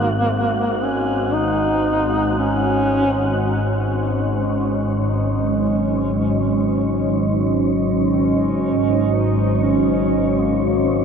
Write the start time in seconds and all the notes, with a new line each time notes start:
Already playing: G#1 G#2 A#3 F#4 F#5
0.83 C#4
1.34 D#4
2.39 C#4
3.43 G#1 G#2 C#4 C#5
4.48 F#4
4.63 D#5
5.01 D#4
5.54 C#4
6.56 C#4
8.11 C#4
9.14 D#4
9.64 C#4
10.40 A#3
10.65 A#3